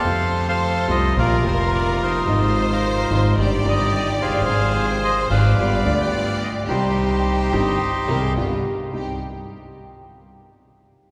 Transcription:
<<
  \new Staff \with { instrumentName = "Bandoneon" } { \time 4/4 \key c \minor \tempo 4 = 108 << { f''8. f''8. ees''8 d''8 c''8 d''8 c''8~ | c''8. bes'8. c''8 d''8 ees''8 ees''8 f''8~ | f''8. g''16 ees''8 f''4~ f''16 g''16 d''8 ees''16 d''16 | c''2. r4 |
r1 | } \\ { <a' c''>8. <a' c''>4~ <a' c''>16 <f' bes'>4. <ees' f'>8~ | <ees' f'>8. <ees' f'>4~ <ees' f'>16 g'4. <aes' c''>8~ | <aes' c''>4. <b' d''>2 r8 | <ees' g'>2. r4 |
r1 | } >> }
  \new Staff \with { instrumentName = "Violin section" } { \time 4/4 \key c \minor c''2 bes'2 | c''2 d''2 | c''2 d''2 | g'2.~ g'8 r8 |
g'8 r2. r8 | }
  \new Staff \with { instrumentName = "Flute" } { \time 4/4 \key c \minor r1 | r1 | r1 | r2 r8 bes'16 aes'16 g'4 |
g'8 r2. r8 | }
  \new Staff \with { instrumentName = "String section" } { \time 4/4 \key c \minor <a c' f'>4. <a c' f'>8 <bes c' f'>8 <bes c' f'>4. | <aes ees' f'>4. <aes ees' f'>8 <c' ees' g'>8 <c' ees' g'>4. | <c' f' aes'>4. <c' f' aes'>8 <b f' g'>8 <b f' g'>4. | <c' ees' g'>4. <c' ees' g'>8 r8 <c' ees' g'>8 <b f' g'>8 r8 |
<c' ees' g'>8 r2. r8 | }
  \new Staff \with { instrumentName = "Grand piano" } { \clef bass \time 4/4 \key c \minor << { <f, c f a f'>4. <c, c f a f'>8 <bes,, bes, c f bes f'>8 <f,, f, c f bes f'>4. | <aes,, aes, c f aes ees'>4. <aes,, aes, c f aes ees'>8 <g,, g, c ees g ees'>8 <g,, g, c ees g ees'>4. | <aes,, aes, c f aes f'>4. <aes,, aes, c f aes f'>8 <g,, g, d g b f'>8 <d, d g b f'>4. | <c, c ees g c' g'>4. <g,, g, ees g c' g'>8 r8 <c, c ees g c' g'>8 <g,, g, d g b f'>8 r8 |
<c, g c' ees'>8 r2. r8 | } \\ { r1 | r2. r8 r32 f,,32 fis,,32 g,,32 | r1 | r1 |
r1 | } >> }
  \new Staff \with { instrumentName = "Upright bass" } { \clef bass \time 4/4 \key c \minor f,4~ f,16. r32 c,16. r32 bes,,16. r32 f,,4~ f,,16. r32 | aes,,4~ aes,,16. r32 aes,,16. r32 g,,16. r32 g,,4~ g,,32 f,,32 fis,,32 g,,32 | aes,,4~ aes,,16. r32 aes,,16. r32 g,,16. r32 d,4~ d,16. r32 | c,4~ c,16. r32 g,,16. r8 r32 c,16. r32 g,,16. r8 r32 |
c,8 r2. r8 | }
>>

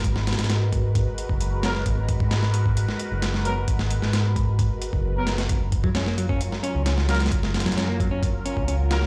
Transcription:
<<
  \new Staff \with { instrumentName = "Analog synth pad" } { \time 4/4 \key gis \dorian \tempo 4 = 132 <gis fis' ais' b'>1~ | <gis fis' ais' b'>1~ | <gis fis' ais' b'>1 | <fis eis' ais'>1~ |
<fis eis' ais'>1 | }
  \new Staff \with { instrumentName = "Clean electric guitar" } { \time 4/4 \key gis \dorian r1 | r1 | r1 | r8. fis16 cis'16 ais16 fis16 cis'16 r8 cis'8 cis'16 r8. |
r8. fis16 cis'16 ais16 fis16 cis'16 r8 cis'8 cis'16 r8. | }
  \new Staff \with { instrumentName = "Brass ensemble" } { \time 4/4 \key gis \dorian r2. r8 <fis b ais'>16 r16 | r2. r8 <fis b ais'>16 r16 | r2. r16 <fis b ais'>16 r8 | r2. r8 <fis eis' ais'>16 r16 |
r2. r8 <fis eis' ais'>16 r16 | }
  \new Staff \with { instrumentName = "Fingered electric bass" } { \clef bass \time 4/4 \key gis \dorian gis,,8. gis,4. r8 fis,,4~ fis,,16 | gis,,8. gis,4. r8 fis,,4~ fis,,16 | gis,,8. gis,4. r8 fis,,4~ fis,,16 | fis,,8. fis,4. r8 cis,4~ cis,16 |
fis,,8. fis,4. r8 cis,4~ cis,16 | }
  \new DrumStaff \with { instrumentName = "Drums" } \drummode { \time 4/4 <hh bd>16 sn16 <hh sn>32 <hh sn>32 <hh sn>32 <hh sn>32 <hh sn>8 <hh bd>8 <hh bd>8 hh16 bd16 hh8 <hh sn>16 sn16 | <hh bd>8 <hh bd>16 bd16 <hh sn>16 sn16 hh16 bd16 hh16 sn16 hh8 <hh sn>16 sn16 hh8 | <hh bd>16 sn16 hh16 sn16 <hh sn>8 <hh bd>8 <hh bd>8 hh16 bd16 r8 <hh sn>16 <hh sn>16 | <hh bd>8 <hh bd>16 bd16 <hh sn>16 sn16 hh16 bd16 hh16 sn16 hh8 <hh sn>16 sn16 <hh sn>32 <hh sn>32 <hh sn>32 <hh sn>32 |
<hh bd>16 sn16 <hh sn>32 <hh sn>32 <hh sn>32 <hh sn>32 <hh sn>8 <hh bd>8 <hh bd>8 hh16 bd16 hh8 <hh sn>16 sn16 | }
>>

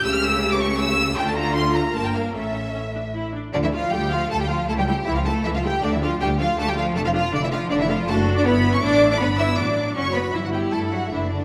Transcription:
<<
  \new Staff \with { instrumentName = "Violin section" } { \time 3/4 \key d \minor \tempo 4 = 158 e'''16 f'''16 e'''8. d'''16 cis'''8 e'''4 | g''16 a''16 bes''8 c'''8 bes''8 a''16 g''16 f''8 | e''2 r4 | d''16 e''16 f''8 g''8 f''8 a''16 g''16 f''8 |
a''16 g''16 g''8 e''16 f''16 a''8 e''16 f''16 g''8 | d''16 e''16 f''8 g''8 f''8 a''16 g''16 f''8 | a''16 f''16 f''8 d''16 e''16 f''8 d''16 e''16 f''8 | \key d \major a''8. d'''16 b''8. cis'''16 d'''8. d'''16 |
b''8 e'''8 d'''4 cis'''8 b''8 | e''16 fis''16 g''8 a''8 fis''8 e''8 d''8 | }
  \new Staff \with { instrumentName = "Violin section" } { \time 3/4 \key d \minor e'''16 f'''16 e'''8. d'''16 cis'''8 e'''4 | g''16 a''16 bes''8 c'''8 bes''8 a''16 g''16 f''8 | e''2 r4 | d'16 e'16 f'8 g'8 f'8 a'16 g'16 f'8 |
a'16 g'16 g'8 e'16 f'16 a'8 e'16 f'16 g'8 | d'16 e'16 f'8 g'8 f'8 a'16 g'16 f'8 | a'16 f'16 f'8 d'16 e'16 f'8 d'16 e'16 f'8 | \key d \major a'8. d''16 b'8. cis''16 d''8. d''16 |
b'8 e''8 d''4 cis''8 b'8 | e'16 fis'16 g'8 a'8 fis'8 e'8 d'8 | }
  \new Staff \with { instrumentName = "Viola section" } { \time 3/4 \key d \minor << { g'2. | f'2 bes'4 | a'4 cis'8 d'8 e'8 d'8 | f'8 f'8 f'8 f'8 f'8 f'8 |
e'8 e'8 e'8 e'8 e'8 e'8 | d'8 d'8 d'8 d'8 d'8 d'8 | d'8 d'8 d'8 d'8 d'8 d'8 | \key d \major fis'4 e'2 |
d'4 d'4 fis'4 | e'2 d'4 | } \\ { a2. | a2 bes4 | cis'4 r2 | a8 a8 a8 a8 a8 a8 |
a8 a8 a8 a8 a8 a8 | a8 a8 a8 a8 a8 a8 | a8 a8 a8 a8 a8 a8 | d'4 b4 a4 |
b4 fis2 | g2 a4 | } >> }
  \new Staff \with { instrumentName = "Cello section" } { \clef bass \time 3/4 \key d \minor cis2. | d2 g,4 | a,2~ a,8 r8 | d16 e16 r8 g8 f8 a16 g16 f8 |
a16 g16 g8 e16 f16 a8 e16 f16 g8 | d16 e16 f8 g8 f8 a16 g16 f8 | a16 f16 f8 d16 e16 f8 d16 e16 f8 | \key d \major a8. d'16 b8. cis'16 d'8. d'16 |
b8 e'8 d'4 cis'8 b8 | e16 fis16 g8 a8 fis8 e8 d8 | }
  \new Staff \with { instrumentName = "Double bass section" } { \clef bass \time 3/4 \key d \minor cis,2. | d,2 g,,4 | a,,2~ a,,8 r8 | d,4 d,4 d,4 |
cis,4 cis,4 cis,4 | d,4 d,4 d,4 | f,,4 f,,4 f,,4 | \key d \major fis,,4 g,,4 a,,4 |
g,,4 a,,4 fis,,4 | g,,4 g,4 fis,,4 | }
>>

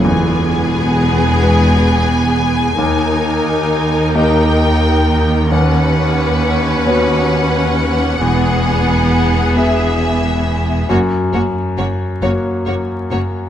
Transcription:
<<
  \new Staff \with { instrumentName = "Violin section" } { \time 6/8 \key e \lydian \tempo 4. = 45 gis''2.~ | gis''4. g''4. | fis''2.~ | fis''4. e''4. |
cis''8 cis''8 cis''8 cis''8 cis''8 cis''8 | }
  \new Staff \with { instrumentName = "Violin section" } { \time 6/8 \key e \lydian gis'2. | ais'2. | b'2. | gis'2. |
fis'8 fis'8 fis'8 fis'8 fis'8 fis'8 | }
  \new Staff \with { instrumentName = "Grand piano" } { \time 6/8 \key e \lydian e,4. <gis gis' b'>4. | dis,4. <ais g' dis''>4. | dis,4. <b fis' cis''>4. | e,4. <b gis' e''>4. |
fis,4. <ais fis' cis''>4. | }
  \new Staff \with { instrumentName = "Viola section" } { \time 6/8 \key e \lydian b2. | dis'2. | cis'2. | b2. |
ais8 ais8 ais8 ais8 ais8 ais8 | }
  \new Staff \with { instrumentName = "Cello section" } { \clef bass \time 6/8 \key e \lydian e,2. | dis,2.~ | dis,2. | e,2. |
fis,8 fis,8 fis,8 fis,8 fis,8 fis,8 | }
  \new Staff \with { instrumentName = "Double bass section" } { \clef bass \time 6/8 \key e \lydian e,,2. | dis,2.~ | dis,2. | e,,2. |
fis,,8 fis,,8 fis,,8 fis,,8 fis,,8 fis,,8 | }
>>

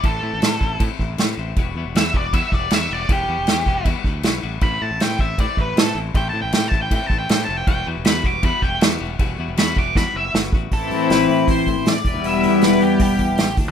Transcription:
<<
  \new Staff \with { instrumentName = "Lead electric guitar" } { \time 4/4 \key e \minor \tempo 4 = 157 a'2 r2 | r4 e''8 d''8 e''8 d''8 e''8 d''8 | g'2 r2 | b''8 a''8 g''8 e''8 d''8 b'8 a'8 r8 |
\tuplet 3/2 { g''8 a''8 g''8 g''8 a''8 g''8 g''8 a''8 g''8 g''8 a''8 g''8 } | g''8 r8 b''8 d'''8 b''8 g''8 r4 | r4 b''8 d'''8 b''8 e''8 r4 | a'4 b'4 c''4 d''4 |
e''4 b'8 g'8 g'4. r8 | }
  \new Staff \with { instrumentName = "Clean electric guitar" } { \time 4/4 \key e \minor <e c' e'>8 <e c' e'>8 <e c' e'>8 <e c' e'>8 <e c' e'>8 <e c' e'>8 <e c' e'>8 <e c' e'>8 | <g b e' fis'>8 <g b e' fis'>8 <g b e' fis'>8 <g b e' fis'>8 <g b e' fis'>8 <g b e' fis'>8 <g b e' fis'>8 <g b e' fis'>8 | <g b e' fis'>8 <g b e' fis'>8 <g b e' fis'>8 <g b e' fis'>8 <g b e' fis'>8 <g b e' fis'>8 <g b e' fis'>8 <g b e' fis'>8 | <e c' e'>8 <e c' e'>8 <e c' e'>8 <e c' e'>8 <e c' e'>8 <e c' e'>8 <e c' e'>8 <e c' e'>8 |
<e c' e'>8 <e c' e'>8 <e c' e'>8 <e c' e'>8 <e c' e'>8 <e c' e'>8 <e c' e'>8 <e c' e'>8 | <g b e' fis'>8 <g b e' fis'>8 <g b e' fis'>8 <g b e' fis'>8 <g b e' fis'>8 <g b e' fis'>8 <g b e' fis'>8 <g b e' fis'>8 | <g b e' fis'>8 <g b e' fis'>8 <g b e' fis'>8 <g b e' fis'>8 <g b e' fis'>8 <g b e' fis'>8 <g b e' fis'>8 <g b e' fis'>8 | <e c' e'>2.~ <e c' e'>8 <g b e'>8~ |
<g b e'>2.~ <g b e'>8 <fis a d'>8 | }
  \new Staff \with { instrumentName = "Clean electric guitar" } { \time 4/4 \key e \minor r1 | r1 | r1 | <e c' e'>8 <e c' e'>8 <e c' e'>8 <e c' e'>8 <e c' e'>8 <e c' e'>8 <e c' e'>8 <c' e'>8 |
<e c' e'>8 <e c' e'>8 <e c' e'>8 <e c' e'>8 <e c' e'>8 <e c' e'>8 <e c' e'>8 <e c' e'>8 | <g b e' fis'>8 <g b e' fis'>8 <g b e' fis'>8 <g b e' fis'>8 <g b e' fis'>8 <g b e' fis'>8 <g b e' fis'>8 <g b e' fis'>8 | <g b e' fis'>8 <g b e' fis'>8 <g b e' fis'>8 <g b e' fis'>8 <g b e' fis'>8 <g b e' fis'>8 <g b e' fis'>8 <g b e' fis'>8 | <e c' e'>2.~ <e c' e'>8 <g b e'>8~ |
<g b e'>2.~ <g b e'>8 <fis a d'>8 | }
  \new Staff \with { instrumentName = "Fingered electric bass" } { \clef bass \time 4/4 \key e \minor a,,8 a,16 a,,16 a,8 a,,8 a,16 r16 a,,8 a,8 a,,8 | e,,8 e,16 e,,16 e,8 e,,8 e,16 r16 e,,8 e,8 e,,8 | e,,8 e,16 e,,16 e,8 e,,8 e,16 r16 d,8 b,,8 a,,8 | a,,8 a,16 a,,16 a,8 a,,8 a,16 r16 a,,8 a,8 a,,8 |
a,,8 a,16 a,,16 a,8 a,,8 a,16 r16 a,,8 a,8 f,,8 | e,,8 e,16 e,,16 e,8 e,,8 e,16 r16 e,,8 e,8 e,,8 | e,,8 e,16 e,,16 e,8 e,,8 e,16 r16 fis,,8 g,,8 a,,8 | a,,8 a,8 a,,8 a,8 a,,8 a,16 a,,16 a,8 e,,16 e,16 |
e,,8 e,8 e,,8 e,8 e,,8 e,16 e,,16 a,,8 d,16 d16 | }
  \new DrumStaff \with { instrumentName = "Drums" } \drummode { \time 4/4 <cymc bd>4 <cymc sn>8 bd8 <cymc bd>8 bd8 <cymc sn>4 | <cymc bd>4 <cymc sn>8 bd8 <cymc bd>8 bd8 <cymc sn>4 | <cymc bd>4 <cymc sn>8 bd8 <cymc bd>8 bd8 <cymc sn>4 | <cymc bd>4 <cymc sn>8 bd8 <cymc bd>8 bd8 <cymc sn>4 |
<cymc bd>4 <cymc sn>8 bd8 <cymc bd>8 bd8 <cymc sn>4 | <cymc bd>4 <cymc sn>8 bd8 <cymc bd>8 bd8 <cymc sn>4 | <cymc bd>4 <cymc sn>8 bd8 <bd sn>4 sn8 bd8 | <hho bd>8 hho8 <hho sn>8 hho8 <hho bd>8 <hho bd>8 <hho sn>8 <hho bd>8 |
hho8 hho8 <hho sn>8 hho8 <hho bd>8 <hho bd>8 <hho sn>8 <hho bd>8 | }
>>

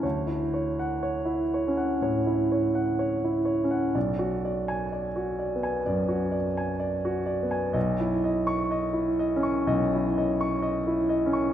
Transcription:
<<
  \new Staff \with { instrumentName = "Grand piano" } { \time 4/4 \key d \lydian \tempo 4 = 62 << { r8. fis''8 r2 r8. | r8. gis''8 r2 r8. | r8. cis'''8 r2 r8. | } \\ { cis''16 e'16 cis''8 cis''16 e'16 cis''16 fis''16 cis''16 e'16 cis''16 fis''16 cis''16 e'16 cis''16 fis''16 | d''16 fis'16 d''8 d''16 fis'16 d''16 gis''16 d''16 fis'16 d''16 gis''16 d''16 fis'16 d''16 gis''16 | dis''16 e'16 dis''8 dis''16 e'16 dis''16 cis'''16 dis''16 e'16 dis''16 cis'''16 dis''16 e'16 dis''16 cis'''16 | } >> }
  \new Staff \with { instrumentName = "Grand piano" } { \clef bass \time 4/4 \key d \lydian d,4~ \tuplet 3/2 { d,4 cis'8 } a,8 r8 \tuplet 3/2 { r4 cis'8 } | b,,4~ \tuplet 3/2 { b,,4 b8 } fis,8 r8 \tuplet 3/2 { r4 b8 } | b,,4~ \tuplet 3/2 { b,,4 cis'8 } b,,4~ \tuplet 3/2 { b,,4 cis'8 } | }
>>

